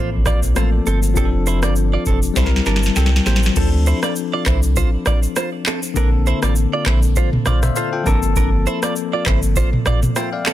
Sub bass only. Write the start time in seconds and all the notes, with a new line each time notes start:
Already playing: A1
0.43 A#1
0.56 A1
0.86 G1
1.16 F1
1.63 G1
2.06 F1
2.36 C2
2.66 G1
2.96 C2
3.26 A1
3.56 D2
4.46 C2
5.96 A#1
6.43 A1
6.86 A#1
7.46 A#1
8.06 G1
9.26 G1